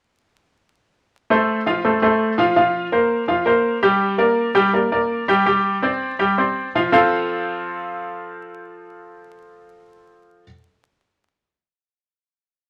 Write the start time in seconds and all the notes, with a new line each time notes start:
1.30 A3 A4 C5
1.66 F3 F4 F5
1.85 A3 A4 C5
2.02 A3 A4 C5
2.38 F3 F4 F5
2.56 F3 F4 F5
2.92 A#3 A#4 C5
3.28 F3 F4 F5
3.46 A#3 A#4 C5
3.83 G3 G4 G5
4.18 A#3 A#4 D5
4.55 G3 G4 G5
4.73 A#3 A#4 D5
4.92 A#3 A#4 D5
5.28 G3 G4 G5
5.46 G3 G4 G5
5.82 C4 C5 D5
6.19 G3 G4 G5
6.38 C4 C5 D5
6.75 F3 F4 F5
6.92 F3 C4 F4 A4 C5 F5